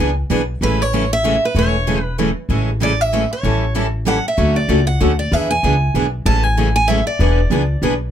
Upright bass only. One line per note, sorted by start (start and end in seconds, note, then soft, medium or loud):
0.00 0.25 C#2 medium
0.30 0.57 B1 medium
0.61 1.37 A1 medium
1.55 2.30 E1 medium
2.49 3.24 A1 medium
3.43 4.19 A1 medium
4.38 4.63 D2 medium
4.68 4.95 C#2 medium
5.01 5.27 D2 medium
5.32 5.57 E2 medium
5.63 5.90 C#2 medium
5.94 6.21 B1 medium
6.25 7.00 A1 medium
7.19 7.44 E1 medium
7.50 7.77 C#2 medium
7.82 8.08 B1 medium